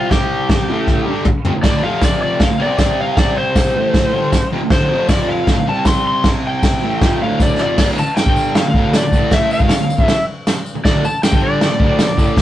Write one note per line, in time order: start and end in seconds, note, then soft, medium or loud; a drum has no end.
0.00 0.67 C3 medium
0.00 0.68 G3 medium
0.00 0.68 C4 loud
0.00 0.10 F4 medium
0.11 1.23 G4 loud
0.11 kick loud
0.11 snare loud
0.11 crash medium
0.49 kick loud
0.49 snare loud
0.49 crash medium
0.69 1.06 A2 loud
0.69 1.06 E3 loud
0.69 1.07 A3 loud
0.87 kick loud
0.87 snare medium
1.06 1.24 G2 loud
1.06 1.25 D3 loud
1.06 1.26 G3 medium
1.25 muted distorted electric guitar stroke medium
1.25 kick loud
1.25 mid tom medium
1.45 1.54 F2 medium
1.45 1.55 C3 loud
1.45 floor tom medium
1.55 1.62 D2 medium
1.55 1.62 A2 medium
1.63 1.81 D2 medium
1.63 1.82 A2 medium
1.63 1.83 D3 loud
1.63 1.82 D5 loud
1.63 kick loud
1.63 snare loud
1.63 splash medium
1.63 crash medium
1.82 2.39 F2 medium
1.82 2.40 C3 medium
1.82 2.40 F3 loud
1.82 2.02 F5 medium
2.01 2.21 D5 loud
2.01 kick loud
2.01 snare loud
2.01 tambourine loud
2.01 crash medium
2.23 2.41 D5 medium
2.40 2.49 D2 medium
2.40 2.49 A2 loud
2.40 2.61 F5 medium
2.40 kick loud
2.40 snare loud
2.40 crash medium
2.50 2.60 D2 medium
2.50 2.60 A2 medium
2.60 3.74 C3 medium
2.60 3.75 G3 loud
2.60 3.75 C4 loud
2.60 2.78 D5 medium
2.78 2.98 D5 medium
2.78 kick medium
2.78 snare loud
2.78 tambourine medium
2.78 crash medium
3.01 3.18 F5 medium
3.17 3.37 D5 medium
3.17 kick loud
3.17 snare loud
3.17 crash medium
3.38 4.49 C5 loud
3.55 kick loud
3.55 snare loud
3.55 tambourine medium
3.55 crash medium
3.75 4.13 A2 loud
3.75 4.13 E3 loud
3.75 4.14 A3 loud
3.94 kick loud
3.94 snare loud
3.94 crash medium
4.13 4.32 G2 medium
4.13 4.32 D3 medium
4.13 4.33 G3 loud
4.32 muted distorted electric guitar stroke medium
4.32 kick loud
4.32 snare loud
4.32 tambourine loud
4.32 crash medium
4.52 4.61 F2 loud
4.52 4.62 C3 loud
4.62 4.71 D2 medium
4.62 4.71 A2 medium
4.70 4.90 D2 loud
4.70 4.90 A2 loud
4.70 4.91 D3 loud
4.70 5.09 C5 loud
4.70 kick loud
4.70 snare loud
4.70 crash medium
4.91 5.47 F2 loud
4.91 5.48 C3 loud
4.91 5.48 F3 loud
5.09 5.28 D5 loud
5.09 kick loud
5.09 snare loud
5.09 tambourine loud
5.09 crash medium
5.29 5.66 F5 medium
5.47 5.57 D2 loud
5.47 5.58 A2 loud
5.47 kick loud
5.47 snare loud
5.47 crash medium
5.58 5.66 D2 medium
5.58 5.67 A2 medium
5.66 6.81 C3 loud
5.66 6.82 G3 loud
5.66 6.82 C4 loud
5.66 5.87 A5 loud
5.85 6.05 C6 medium
5.85 kick loud
5.85 snare loud
5.85 tambourine loud
5.85 crash medium
6.08 6.25 C6 loud
6.24 kick loud
6.24 snare loud
6.24 crash medium
6.47 7.20 G5 loud
6.63 kick loud
6.63 snare loud
6.63 tambourine medium
6.63 crash medium
6.82 7.01 A2 medium
6.82 7.01 E3 loud
6.82 7.01 A3 loud
7.01 7.20 F2 medium
7.01 7.21 C3 loud
7.01 7.21 F3 loud
7.01 kick loud
7.01 snare loud
7.01 crash medium
7.22 7.59 D2 loud
7.22 7.59 A2 loud
7.22 7.60 D3 loud
7.22 7.40 F5 medium
7.40 7.60 D5 medium
7.40 kick loud
7.40 snare medium
7.40 tambourine loud
7.59 7.78 F2 loud
7.59 7.79 C3 medium
7.59 7.79 F3 loud
7.59 7.79 D5 loud
7.59 snare medium
7.78 7.97 D2 medium
7.78 7.98 A2 medium
7.78 7.98 D3 loud
7.78 7.86 D5 medium
7.78 kick loud
7.78 snare loud
7.78 crash loud
7.78 crash medium
7.98 8.16 A5 loud
7.98 muted distorted electric guitar stroke medium
7.98 tambourine medium
8.17 8.56 G5 loud
8.17 snare loud
8.17 tambourine loud
8.17 crash medium
8.26 8.65 G2 medium
8.26 8.65 D3 medium
8.26 8.65 G3 loud
8.26 kick loud
8.36 tambourine medium
8.55 8.94 F5 medium
8.55 snare loud
8.55 tambourine medium
8.55 crash medium
8.66 8.74 D2 medium
8.66 8.74 A2 medium
8.74 9.02 D2 medium
8.74 9.02 A2 medium
8.74 9.03 D3 loud
8.74 kick loud
8.93 9.34 D5 medium
8.93 snare loud
8.93 tambourine loud
8.93 crash medium
9.03 9.12 D2 medium
9.03 9.12 A2 medium
9.12 9.59 A2 medium
9.12 9.61 E3 medium
9.12 9.61 A3 medium
9.12 kick loud
9.12 tambourine medium
9.31 9.52 E5 loud
9.31 kick loud
9.31 snare loud
9.31 crash medium
9.51 10.02 F5 medium
9.51 tambourine medium
9.60 9.69 G#2 medium
9.60 9.70 D#3 loud
9.60 kick loud
9.69 muted distorted electric guitar stroke medium
9.69 snare loud
9.69 tambourine medium
9.69 crash medium
9.80 9.95 D2 medium
9.80 9.95 A2 medium
9.90 tambourine medium
9.98 10.08 D2 medium
9.98 10.08 A2 loud
9.98 10.24 E5 medium
9.98 kick loud
10.08 snare loud
10.08 tambourine medium
10.08 crash medium
10.47 snare loud
10.47 tambourine loud
10.47 crash medium
10.66 tambourine medium
10.75 muted distorted electric guitar stroke medium
10.84 11.02 D2 loud
10.84 11.04 A2 loud
10.84 11.04 D3 loud
10.84 11.04 D5 medium
10.84 kick loud
10.84 snare loud
10.84 crash medium
11.03 11.24 A5 loud
11.03 muted distorted electric guitar stroke medium
11.03 tambourine medium
11.23 11.43 G5 loud
11.23 snare loud
11.23 tambourine loud
11.23 crash medium
11.31 11.69 G2 loud
11.31 11.69 D3 loud
11.31 11.70 G3 loud
11.31 kick loud
11.42 12.42 D5 medium
11.61 snare loud
11.61 tambourine medium
11.61 crash medium
11.70 11.78 D2 medium
11.70 11.79 A2 medium
11.79 12.06 D2 loud
11.79 12.07 A2 loud
11.79 12.09 D3 loud
11.79 kick loud
11.99 snare loud
11.99 tambourine medium
11.99 crash medium
12.07 12.17 D2 medium
12.07 12.16 A2 medium
12.17 12.42 A2 medium
12.17 12.42 E3 loud
12.17 12.42 A3 loud
12.17 kick loud
12.17 tambourine medium
12.37 kick loud
12.37 snare loud
12.37 tambourine soft
12.37 crash medium